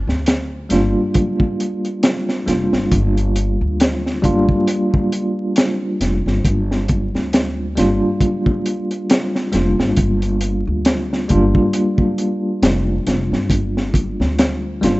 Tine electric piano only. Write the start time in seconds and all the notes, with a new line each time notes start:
0.69 G3 A#3 D4 F4
2.46 G3 A#3 D4 F4
4.22 G3 A#3 D4 F4
7.75 G3 A#3 D4 F4
9.52 G3 A#3 D4 F4
11.28 G3 A#3 D4 F4
14.81 G3 A#3 D4 F4